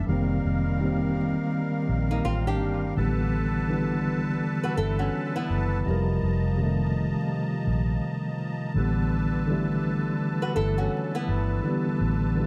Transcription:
0.00 2.93 G3 medium
0.07 0.39 F1 loud
0.07 0.72 D#3 medium
0.07 2.94 D#3 medium
0.07 0.73 G3 medium
0.07 0.74 A#3 medium
0.07 2.94 A#4 medium
0.07 2.94 F5 medium
0.12 0.75 C4 loud
0.45 1.35 F1 medium
0.79 2.08 D#3 medium
0.79 2.09 G3 medium
0.79 2.10 A#3 medium
0.85 2.11 C4 loud
1.89 2.20 A#1 medium
2.11 2.25 A#3 medium
2.11 2.24 D#4 medium
2.25 2.61 A1 medium
2.25 2.46 C4 medium
2.25 2.46 F4 medium
2.47 2.95 D4 medium
2.47 2.95 G4 medium
2.61 2.92 G1 medium
2.96 4.38 A1 loud
2.96 3.61 D3 medium
2.96 5.83 D3 medium
2.96 3.62 E3 medium
2.96 3.63 G3 medium
2.96 5.83 A4 medium
2.96 5.83 B4 medium
2.96 12.47 A5 medium
3.02 3.64 B3 loud
3.68 4.97 D3 medium
3.68 4.98 E3 medium
3.68 4.99 G3 medium
3.74 5.00 B3 medium
4.63 4.78 F#4 medium
4.63 4.77 B4 medium
4.77 5.08 G1 medium
4.77 4.99 E4 medium
4.77 4.98 A4 medium
4.99 5.34 C#4 medium
4.99 5.34 F#4 medium
5.36 6.41 B3 medium
5.36 6.40 E4 medium
5.50 5.81 F#1 medium
5.85 6.17 F1 loud
5.85 6.50 C3 medium
5.85 8.73 F3 medium
5.85 6.51 F3 medium
5.85 6.52 G3 medium
5.85 8.72 D#5 medium
5.85 8.73 A#5 medium
5.91 6.53 A#4 loud
6.23 7.13 F1 loud
6.57 7.87 C3 medium
6.57 7.87 D#3 medium
6.57 7.88 G3 medium
6.63 7.89 A3 loud
7.67 7.98 A#1 medium
8.74 10.16 A1 loud
8.74 9.40 D3 medium
8.74 12.47 D3 medium
8.74 9.41 E3 medium
8.74 9.41 G3 medium
8.74 12.47 A4 medium
8.74 12.47 B4 medium
8.80 9.42 B3 loud
9.47 10.76 D3 loud
9.47 10.77 E3 medium
9.47 10.78 G3 medium
9.52 10.79 A3 loud
10.42 10.56 F#4 medium
10.42 10.55 B4 medium
10.56 10.87 G1 medium
10.56 10.77 E4 medium
10.56 10.77 A4 medium
10.78 11.13 C#4 medium
10.78 11.12 F#4 medium
11.15 12.19 B3 medium
11.15 12.19 E4 medium
11.29 11.59 G1 medium
11.63 12.29 D3 medium
11.63 12.30 E3 medium
11.63 12.30 G3 medium
11.69 12.31 B3 loud
12.01 12.47 A1 loud
12.36 12.47 D3 medium
12.36 12.47 E3 medium
12.36 12.47 G3 medium
12.41 12.47 A3 loud

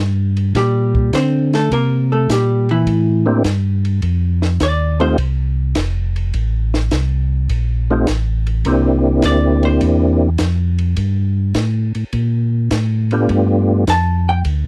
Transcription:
0.00 0.53 G2 medium
0.37 ride soft
0.55 1.11 A#2 medium
0.55 1.10 G3 medium
0.55 1.10 G4 medium
0.55 kick soft
0.55 snare soft
0.55 ride medium
0.95 kick medium
1.13 1.70 D3 medium
1.13 1.53 C4 medium
1.13 1.53 C5 medium
1.13 kick soft
1.13 snare medium
1.13 hi-hat pedal medium
1.13 ride medium
1.53 1.72 A3 medium
1.53 1.72 A4 medium
1.53 snare medium
1.53 ride soft
1.71 2.28 C3 medium
1.71 2.11 A#3 medium
1.71 2.11 A#4 loud
1.71 kick soft
1.71 ride medium
2.12 2.29 A3 medium
2.12 2.29 A4 medium
2.29 2.86 A#2 medium
2.29 2.69 G3 medium
2.29 2.69 G4 medium
2.29 kick soft
2.29 snare medium
2.29 hi-hat pedal medium
2.29 ride medium
2.69 3.24 E3 medium
2.69 3.24 E4 medium
2.69 ride soft
2.87 3.43 A2 medium
2.87 kick soft
2.87 ride medium
3.26 3.43 A#3 medium
3.26 3.43 C4 medium
3.26 3.43 D4 medium
3.26 3.43 E4 medium
3.26 3.43 G4 medium
3.44 4.01 G2 medium
3.44 kick soft
3.44 snare medium
3.44 hi-hat pedal medium
3.44 ride medium
3.85 ride soft
4.02 4.59 F2 medium
4.02 kick soft
4.02 ride medium
4.42 snare soft
4.60 5.17 D#2 medium
4.60 5.01 D5 medium
4.60 kick soft
4.60 snare medium
4.60 hi-hat pedal medium
4.60 ride medium
5.00 5.17 A3 medium
5.00 5.17 C4 medium
5.00 5.17 D#4 medium
5.00 5.17 F4 medium
5.00 5.18 G4 medium
5.00 5.19 C5 medium
5.00 ride soft
5.18 5.75 C2 medium
5.18 kick soft
5.18 ride medium
5.75 6.33 F1 medium
5.75 kick soft
5.75 snare medium
5.75 hi-hat pedal medium
5.75 ride medium
6.16 ride soft
6.34 6.91 A1 medium
6.34 kick soft
6.34 ride medium
6.74 snare medium
6.91 7.48 C2 medium
6.91 kick soft
6.91 snare medium
6.91 hi-hat pedal soft
6.91 ride medium
7.49 8.06 A#1 medium
7.49 kick soft
7.49 ride medium
7.90 8.07 A3 medium
7.90 8.07 C4 medium
7.90 8.07 D#4 medium
7.90 8.07 F4 medium
7.90 8.07 G4 medium
8.07 8.64 A1 medium
8.07 kick soft
8.07 snare medium
8.07 hi-hat pedal medium
8.07 ride medium
8.47 ride soft
8.65 9.22 C2 medium
8.65 10.29 A#3 medium
8.65 10.29 C4 medium
8.65 10.30 D4 medium
8.65 10.30 E4 medium
8.65 10.30 G4 medium
8.65 kick soft
8.65 ride medium
9.22 9.80 D2 medium
9.22 9.64 D5 medium
9.22 kick soft
9.22 snare medium
9.22 hi-hat pedal medium
9.22 ride medium
9.63 9.82 C5 medium
9.63 ride soft
9.81 10.38 E2 medium
9.81 kick soft
9.81 ride medium
10.38 10.96 F2 medium
10.38 kick soft
10.38 snare medium
10.38 hi-hat pedal medium
10.38 ride medium
10.78 ride soft
10.96 11.54 G2 medium
10.96 kick soft
10.96 ride medium
11.54 11.93 A2 medium
11.54 kick soft
11.54 snare medium
11.54 hi-hat pedal soft
11.54 ride medium
11.95 12.04 A2 soft
11.95 ride soft
12.13 12.70 A#2 medium
12.13 kick soft
12.13 ride medium
12.71 13.28 A2 medium
12.71 kick soft
12.71 snare medium
12.71 hi-hat pedal medium
12.71 ride medium
13.11 13.84 A3 medium
13.11 13.84 B3 medium
13.11 13.85 D4 medium
13.11 13.85 F4 medium
13.11 13.85 G4 medium
13.11 ride soft
13.29 13.86 G2 medium
13.29 kick soft
13.29 ride medium
13.87 14.44 F2 medium
13.87 14.27 A5 medium
13.87 kick soft
13.87 snare medium
13.87 hi-hat pedal medium
13.87 ride medium
14.29 14.39 G5 loud
14.45 14.64 D2 medium
14.45 kick soft
14.45 ride medium

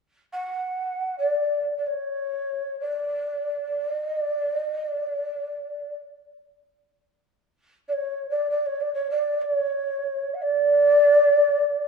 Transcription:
0.32 1.15 F#5 medium
1.18 1.76 D5 medium
1.77 1.88 D5 soft
1.87 2.78 C#5 medium
2.80 3.93 D5 medium
3.93 4.23 D#5 medium
4.23 4.56 D5 medium
4.56 4.87 D#5 medium
4.87 5.98 D5 medium
7.88 7.94 D5 medium
7.93 8.26 C#5 medium
8.30 8.47 D5 medium
8.50 8.67 D5 medium
8.66 8.82 C#5 medium
8.80 8.93 D5 medium
8.94 9.07 C#5 medium
9.10 9.42 D5 medium
9.42 9.53 D5 medium
9.53 10.35 C#5 medium
10.34 10.44 F#5 medium
10.42 11.88 D5 medium

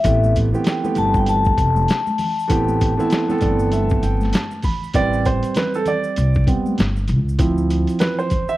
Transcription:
0.00 0.46 E3 medium
0.00 0.32 E5 loud
0.00 closed hi-hat medium
0.04 0.50 A1 loud
0.04 0.46 A3 medium
0.04 0.47 B3 medium
0.04 0.47 C4 medium
0.04 0.48 G4 medium
0.04 kick loud
0.04 maracas medium
0.23 high conga soft
0.23 maracas soft
0.36 kick medium
0.36 closed hi-hat medium
0.36 maracas soft
0.52 0.79 E3 medium
0.52 0.79 A3 medium
0.52 0.79 B3 medium
0.52 0.80 C4 medium
0.52 0.80 G4 medium
0.52 maracas soft
0.64 0.98 G5 medium
0.64 snare loud
0.64 closed hi-hat medium
0.64 maracas medium
0.83 1.88 E3 medium
0.83 1.88 A3 medium
0.83 1.88 B3 medium
0.83 1.89 C4 medium
0.83 1.89 G4 medium
0.83 high conga medium
0.83 maracas soft
0.95 1.54 G1 loud
0.95 1.16 A5 loud
0.95 closed hi-hat medium
0.95 low conga medium
0.95 maracas medium
1.14 1.22 G5 loud
1.14 kick medium
1.14 maracas medium
1.26 4.30 A5 loud
1.26 closed hi-hat medium
1.26 high conga soft
1.26 maracas medium
1.45 kick loud
1.45 maracas soft
1.58 1.86 F1 medium
1.58 kick medium
1.58 closed hi-hat medium
1.58 maracas soft
1.76 high conga medium
1.76 maracas soft
1.88 snare loud
1.88 closed hi-hat medium
1.88 maracas medium
2.07 high conga medium
2.07 maracas soft
2.18 open hi-hat medium
2.18 low conga medium
2.18 maracas soft
2.39 maracas soft
2.48 2.95 A1 medium
2.48 2.91 E3 medium
2.48 2.91 A3 medium
2.48 2.91 B3 medium
2.48 2.92 C4 medium
2.48 2.92 G4 medium
2.48 kick loud
2.48 closed hi-hat loud
2.48 maracas medium
2.68 high conga soft
2.68 maracas soft
2.81 kick medium
2.81 closed hi-hat medium
2.81 maracas medium
2.97 3.24 E3 medium
2.97 3.24 A3 medium
2.97 3.25 B3 medium
2.97 3.25 C4 medium
2.97 3.25 E4 loud
2.97 maracas soft
3.10 snare loud
3.10 closed hi-hat medium
3.10 maracas medium
3.28 4.33 E3 medium
3.28 4.33 A3 medium
3.28 4.33 B3 medium
3.28 4.34 C4 medium
3.28 4.34 A4 loud
3.28 high conga medium
3.28 maracas soft
3.41 3.99 G1 medium
3.41 3.70 D5 medium
3.41 kick medium
3.41 closed hi-hat medium
3.41 low conga medium
3.41 maracas medium
3.59 maracas medium
3.72 4.01 E5 medium
3.72 closed hi-hat medium
3.72 high conga soft
3.72 maracas medium
3.90 kick medium
3.90 maracas soft
4.03 4.31 G1 medium
4.03 4.31 G5 medium
4.03 closed hi-hat medium
4.03 maracas medium
4.21 snare soft
4.21 high conga medium
4.21 maracas soft
4.33 4.62 A5 medium
4.33 snare loud
4.33 closed hi-hat medium
4.33 maracas medium
4.51 high conga soft
4.51 maracas soft
4.63 4.92 B5 medium
4.63 kick medium
4.63 open hi-hat medium
4.63 low conga medium
4.63 maracas soft
4.84 maracas soft
4.94 5.39 A1 loud
4.94 6.46 G3 medium
4.94 6.46 C4 medium
4.94 5.55 B4 soft
4.94 5.26 D5 loud
4.94 kick loud
4.94 closed hi-hat medium
4.94 maracas medium
5.13 maracas soft
5.25 5.57 C5 medium
5.25 kick medium
5.25 closed hi-hat medium
5.25 maracas soft
5.43 closed hi-hat medium
5.43 maracas soft
5.54 5.75 B4 medium
5.54 snare loud
5.54 closed hi-hat medium
5.54 low conga medium
5.54 maracas medium
5.74 5.87 A4 medium
5.74 maracas soft
5.86 6.44 D5 medium
5.86 closed hi-hat medium
5.86 low conga medium
5.86 maracas medium
6.04 maracas medium
6.16 6.45 C2 medium
6.16 closed hi-hat medium
6.16 maracas medium
6.34 kick medium
6.34 maracas soft
6.47 6.75 G3 soft
6.47 6.75 B3 soft
6.47 6.75 C4 medium
6.47 kick medium
6.47 closed hi-hat medium
6.47 maracas soft
6.66 high conga medium
6.66 maracas soft
6.78 7.10 G1 medium
6.78 snare loud
6.78 closed hi-hat medium
6.78 maracas medium
6.96 maracas soft
7.08 7.37 C#2 medium
7.08 closed hi-hat medium
7.08 low conga medium
7.08 maracas soft
7.29 maracas soft
7.38 7.84 D2 loud
7.38 8.27 F3 medium
7.38 8.27 C4 medium
7.38 8.27 E4 medium
7.38 kick loud
7.38 closed hi-hat loud
7.38 maracas medium
7.58 maracas soft
7.70 closed hi-hat medium
7.70 maracas soft
7.87 closed hi-hat soft
7.87 maracas soft
7.99 8.17 B4 medium
7.99 snare loud
7.99 closed hi-hat medium
7.99 low conga medium
7.99 maracas medium
8.19 8.50 C5 medium
8.19 maracas soft
8.30 kick medium
8.30 closed hi-hat medium
8.30 low conga medium
8.30 maracas medium
8.49 8.57 E5 medium
8.49 maracas medium

